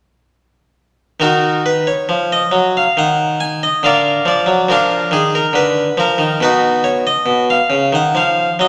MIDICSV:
0, 0, Header, 1, 2, 480
1, 0, Start_track
1, 0, Key_signature, -6, "minor"
1, 0, Tempo, 910470
1, 625, Time_signature, 3, 2, 24, 8
1, 1574, Tempo, 860832
1, 3974, Tempo, 884956
1, 4729, End_track
2, 0, Start_track
2, 0, Title_t, "Harpsichord"
2, 0, Program_c, 0, 6
2, 632, Note_on_c, 0, 51, 61
2, 638, Note_on_c, 0, 70, 70
2, 642, Note_on_c, 0, 66, 62
2, 645, Note_on_c, 0, 63, 63
2, 838, Note_off_c, 0, 70, 0
2, 859, Note_off_c, 0, 66, 0
2, 861, Note_off_c, 0, 63, 0
2, 874, Note_on_c, 0, 71, 67
2, 975, Note_off_c, 0, 51, 0
2, 987, Note_on_c, 0, 73, 69
2, 990, Note_off_c, 0, 71, 0
2, 1101, Note_on_c, 0, 53, 52
2, 1188, Note_off_c, 0, 73, 0
2, 1226, Note_on_c, 0, 75, 74
2, 1272, Note_off_c, 0, 53, 0
2, 1326, Note_on_c, 0, 54, 62
2, 1424, Note_off_c, 0, 75, 0
2, 1461, Note_on_c, 0, 77, 79
2, 1500, Note_off_c, 0, 54, 0
2, 1567, Note_on_c, 0, 51, 61
2, 1574, Note_on_c, 0, 78, 94
2, 1576, Note_off_c, 0, 77, 0
2, 1808, Note_on_c, 0, 80, 99
2, 1819, Note_off_c, 0, 78, 0
2, 1920, Note_off_c, 0, 51, 0
2, 1934, Note_off_c, 0, 80, 0
2, 1935, Note_on_c, 0, 75, 73
2, 2046, Note_on_c, 0, 50, 65
2, 2052, Note_on_c, 0, 77, 91
2, 2058, Note_off_c, 0, 75, 0
2, 2060, Note_on_c, 0, 70, 71
2, 2062, Note_on_c, 0, 74, 73
2, 2226, Note_off_c, 0, 50, 0
2, 2282, Note_on_c, 0, 53, 66
2, 2286, Note_off_c, 0, 70, 0
2, 2287, Note_off_c, 0, 74, 0
2, 2295, Note_on_c, 0, 74, 88
2, 2299, Note_off_c, 0, 77, 0
2, 2398, Note_on_c, 0, 54, 64
2, 2408, Note_off_c, 0, 53, 0
2, 2522, Note_on_c, 0, 53, 64
2, 2526, Note_off_c, 0, 54, 0
2, 2530, Note_on_c, 0, 70, 87
2, 2538, Note_on_c, 0, 62, 67
2, 2540, Note_on_c, 0, 65, 70
2, 2542, Note_off_c, 0, 74, 0
2, 2704, Note_off_c, 0, 53, 0
2, 2741, Note_off_c, 0, 70, 0
2, 2760, Note_on_c, 0, 51, 71
2, 2765, Note_off_c, 0, 62, 0
2, 2767, Note_off_c, 0, 65, 0
2, 2769, Note_on_c, 0, 68, 89
2, 2893, Note_on_c, 0, 70, 88
2, 2898, Note_off_c, 0, 68, 0
2, 2942, Note_off_c, 0, 51, 0
2, 2994, Note_on_c, 0, 50, 69
2, 3006, Note_on_c, 0, 71, 93
2, 3019, Note_off_c, 0, 70, 0
2, 3177, Note_off_c, 0, 50, 0
2, 3241, Note_on_c, 0, 53, 74
2, 3254, Note_off_c, 0, 71, 0
2, 3254, Note_on_c, 0, 70, 86
2, 3357, Note_on_c, 0, 51, 65
2, 3364, Note_off_c, 0, 53, 0
2, 3460, Note_off_c, 0, 70, 0
2, 3481, Note_on_c, 0, 47, 74
2, 3482, Note_off_c, 0, 51, 0
2, 3492, Note_on_c, 0, 71, 91
2, 3495, Note_on_c, 0, 66, 69
2, 3500, Note_on_c, 0, 63, 70
2, 3718, Note_off_c, 0, 66, 0
2, 3721, Note_off_c, 0, 63, 0
2, 3724, Note_on_c, 0, 73, 88
2, 3734, Note_off_c, 0, 71, 0
2, 3830, Note_off_c, 0, 47, 0
2, 3849, Note_off_c, 0, 73, 0
2, 3850, Note_on_c, 0, 75, 87
2, 3956, Note_on_c, 0, 47, 62
2, 4054, Note_off_c, 0, 75, 0
2, 4089, Note_on_c, 0, 77, 92
2, 4132, Note_off_c, 0, 47, 0
2, 4195, Note_on_c, 0, 49, 59
2, 4292, Note_off_c, 0, 77, 0
2, 4316, Note_off_c, 0, 49, 0
2, 4319, Note_on_c, 0, 51, 58
2, 4332, Note_on_c, 0, 78, 78
2, 4438, Note_off_c, 0, 51, 0
2, 4440, Note_on_c, 0, 53, 57
2, 4451, Note_on_c, 0, 77, 88
2, 4452, Note_off_c, 0, 78, 0
2, 4620, Note_off_c, 0, 53, 0
2, 4658, Note_off_c, 0, 77, 0
2, 4681, Note_on_c, 0, 54, 58
2, 4690, Note_on_c, 0, 75, 80
2, 4729, Note_off_c, 0, 54, 0
2, 4729, Note_off_c, 0, 75, 0
2, 4729, End_track
0, 0, End_of_file